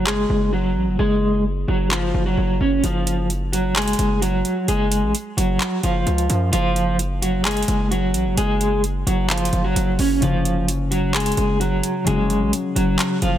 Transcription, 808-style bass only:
Already playing: F#1
0.30 F#1
0.76 A1
0.88 F#1
0.99 F#1
1.68 F#1
2.14 F#1
2.38 F#1
2.61 F#1
2.84 F#1
3.99 F#1
4.68 F#1
5.03 A1
5.37 F#1
5.84 F#1
6.07 C#2
6.30 F#2
6.53 F#1
7.68 F#1
8.14 A1
8.26 F#1
8.38 F#1
9.07 F#1
9.53 F#1
9.76 F#1
9.99 F#1
10.22 F#1
11.38 F#1
12.07 F#1
12.41 A1
12.76 F#1
13.22 F#1

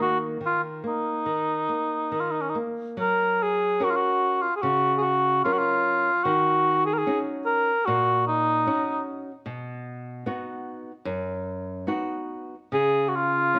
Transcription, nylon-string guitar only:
Already playing: D#3
0.00 A#3
0.41 D#3
0.84 A#3
1.26 D#3
1.69 A#3
2.12 D#3
2.55 A#3
2.97 F#3
3.80 C#4 F#4 A#4
4.63 C#3
5.45 F#3 C#4 A#4
6.25 D#3
7.07 C#4 D#4 F#4
7.87 A#2
8.66 C#4 D#4 F#4
9.46 B2
10.26 B3 D#4 F#4
11.05 F#2
11.87 B3 D#4 F#4
12.72 C#3
13.54 C#4 D#4 F4

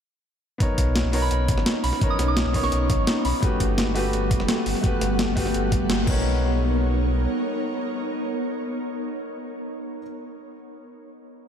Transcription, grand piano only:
0.58 B3 D#4 A#4
0.63 C#5
1.12 B3 D#4 A#4 C#5
1.99 B3 D#4 A#4
2.04 C#5
2.53 B3 D#4 A#4 C#5
3.40 A3 F#4 G4
3.45 B4
3.95 A3 F#4 G4 B4
4.82 A3 F#4 G4
4.86 B4
5.36 A3 F#4 G4 B4
6.04 B3 D#4
6.08 A#4 C#5

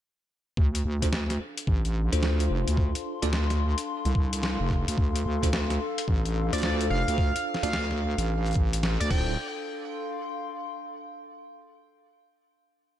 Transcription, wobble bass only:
0.57 D2
0.85 D2
1.67 A1
2.13 D2
2.50 F1
2.68 D2
3.23 D2
4.05 C2
4.15 C2
4.60 F1
4.88 D2
4.98 D2
5.26 D2
6.08 A1
6.53 D2
6.90 F1
7.08 D2
7.63 D2
8.18 A1
8.55 A1
9.01 D2
9.11 D1

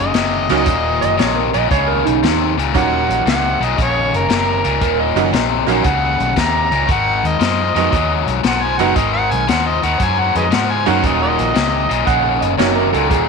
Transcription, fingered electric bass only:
0.00 F#1
0.15 F#1
0.50 C#2
0.67 D#1
1.03 F#1
1.19 A#1
1.55 A#1
1.71 C#2
2.07 B1
2.23 D#2
2.58 C#2
2.75 D#1
3.09 A#1
3.26 C#2
3.60 B1
3.78 A#1
4.13 F#1
4.30 F#1
4.65 C#2
4.81 D#1
5.16 F#1
5.33 A#1
5.68 A#1
5.85 C#2
6.20 B1
6.37 D#2
6.72 C#2
6.89 G#1
7.24 D#2
7.40 F#2
7.75 F2
7.93 D#2
8.27 B1
8.44 B1
8.80 F#1
8.96 G#1
9.32 B1
9.48 D#2
9.83 D#2
10.00 F#2
10.35 F2
10.52 G#2
10.87 F#2
11.04 D#1
11.39 A#1
11.56 C#2
11.91 B1
12.07 A#1
12.43 F#1
12.59 F#1
12.94 C#2
13.11 D#1

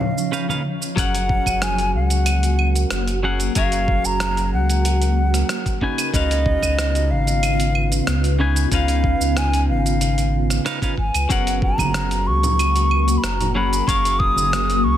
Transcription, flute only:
Already playing: F5
0.99 F#5
1.63 G#5
1.96 F#5
3.56 F5
4.06 A#5
4.54 F#5
6.14 D#5
7.11 F5
8.73 F5
9.37 G#5
9.69 F5
10.99 G#5
11.31 F#5
11.64 A#5
12.27 C#6
13.18 B5
13.24 A#5
13.56 B5
13.88 C#6
14.19 D#6
14.84 C#6

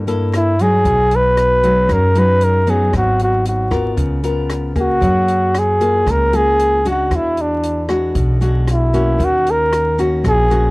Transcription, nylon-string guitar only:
Already playing: G2
0.07 A#3 E4 A4
0.60 F#3 G#3 D#4
0.85 B2
1.63 F#3 G#3 D#4
1.88 F#2
2.15 F#3 G#3 D#4
2.67 F#3 B3 D#4
2.93 G#2
3.71 B3 F4 A#4
3.97 C#3
4.23 B3 F4 A#4
4.75 A#3 G#4
5.01 F#3
5.81 A#3 F4 G#4
6.07 C#3
6.33 A#3 F4 G#4
6.85 G#3 D4 F#4
7.11 E3
7.88 G#3 D4 F#4
8.15 B2
8.41 G#3 D4 F#4
8.93 A#3 C#4 F#4
9.18 D#3
9.98 A#3 C#4 F#4
10.25 A#2
10.50 A#3 C#4 F#4

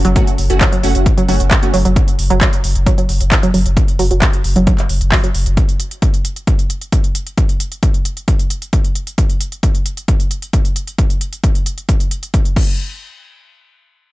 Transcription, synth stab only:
0.16 A3 C#4 F#4
0.50 A3 C#4 F#4
0.83 A3 C#4 F#4
1.29 A3 C#4 F#4
1.63 A3 C#4 F#4

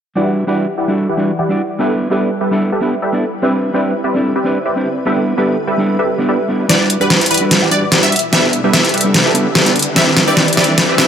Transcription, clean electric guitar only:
0.16 G3 D4 E4 F#4 B4
0.47 G3 D4 E4 F#4 B4
0.88 G3 D4 E4 F#4 A4
1.17 G3 D4 E4 F#4 B4
1.49 G3 D4 E4 F#4 D5
1.79 G3 B3 D4 E4 B4
2.10 G3 B3 D4 E4 B4
2.51 G3 B3 D4 E4 A4
2.81 G3 B3 D4 E4 B4
3.12 G3 B3 D4 E4 D5
3.42 G3 C4 D4 E4 B4
3.74 G3 C4 D4 E4 B4
4.14 G3 C4 D4 E4 A4
4.44 G3 C4 D4 E4 B4
4.76 G3 C4 D4 E4 C5
5.05 G3 B3 D4 E4 B4
5.37 G3 B3 D4 E4 B4
5.78 G3 B3 D4 E4 A4
6.18 G3 B3 D4 E4 B4
6.48 G3 B3 D4 E4 B4
6.69 G3 D4 E4 F#4 B4
7.00 G3 D4 E4 F#4 B4
7.41 G3 D4 E4 F#4 A4
7.71 G3 D4 E4 F#4 B4
8.02 G3 D4 E4 F#4 D5
8.32 G3 B3 D4 E4 B4
8.63 G3 B3 D4 E4 B4
9.04 G3 B3 D4 E4 A4
9.34 G3 B3 D4 E4 B4
9.65 G3 B3 D4 E4 D5
9.95 G3 C4 D4 E4 B4
10.27 G3 C4 D4 E4 B4
10.67 G3 C4 D4 E4 A4
10.97 G3 C4 D4 E4 B4

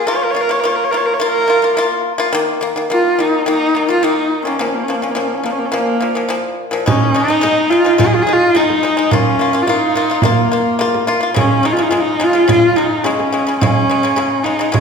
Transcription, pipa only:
0.07 A#3 F4
0.35 A#3 F4
0.49 A#3 F4
0.64 A#3 F4
0.93 A#3 F4
1.20 A#3 F4
1.48 A#3 F4
1.62 A#3 F4
1.77 A#3 F4
2.18 A#3 F4
2.33 D#3 A#3
2.61 D#3 A#3
2.76 D#3 A#3
2.90 D#3 A#3
3.19 D#3 A#3
3.46 D#3 A#3
3.75 D#3 A#3
3.89 D#3 A#3
4.03 D#3 A#3
4.45 D#3 A#3
4.59 A#2 F3
4.88 A#2 F3
5.02 A#2 F3
5.15 A#2 F3
5.43 A#2 F3
5.72 A#2 F3
6.00 A#2 F3
6.15 A#2 F3
6.29 A#2 F3
6.71 A#2 F3
6.86 G#3 D#4
7.14 G#3 D#4
7.28 G#3 D#4
7.41 G#3 D#4
7.71 G#3 D#4
7.84 G#3 D#4
7.98 G#3 D#4
8.27 G#3 D#4
8.55 G#3 D#4
8.83 G#3 D#4
8.97 G#3 D#4
9.11 A#3 F4
9.39 A#3 F4
9.53 A#3 F4
9.67 A#3 F4
9.95 A#3 F4
10.10 A#3 F4
10.23 A#3 F4
10.52 A#3 F4
10.79 A#3 F4
11.07 A#3 F4
11.21 A#3 F4
11.34 C#3 G#3
11.63 C#3 G#3
11.77 C#3 G#3
11.91 C#3 G#3
12.20 C#3 G#3
12.33 C#3 G#3
12.48 C#3 G#3
12.76 C#3 G#3
13.04 C#3 G#3
13.32 C#3 G#3
13.47 C#3 G#3
13.61 C#3 G#3
13.89 C#3 G#3
14.03 C#3 G#3
14.16 C#3 G#3
14.44 C#3 G#3
14.59 C#3 G#3
14.72 C#3 G#3

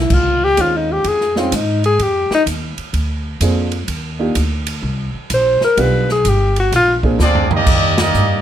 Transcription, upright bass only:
0.10 C#2
0.57 D#2
1.04 F2
1.52 G#2
1.99 F2
2.30 muted upright bass stroke
2.46 D#2
2.78 muted upright bass stroke
2.93 D2
3.40 F2
3.88 D#2
4.36 D2
4.83 C2
5.14 muted upright bass stroke
5.30 A#1
5.62 muted upright bass stroke
5.77 B1
6.25 G1
6.72 A#1
7.19 D2
7.66 D#2
8.14 G2

